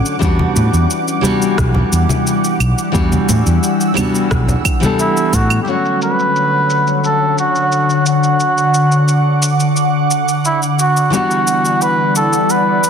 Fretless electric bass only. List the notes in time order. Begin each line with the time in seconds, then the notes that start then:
0.22 E2
0.56 A2
0.73 E2
1.58 B1
1.92 E2
2.60 B1
2.94 E2
3.29 A2
3.46 E2
4.31 B1
5.33 A2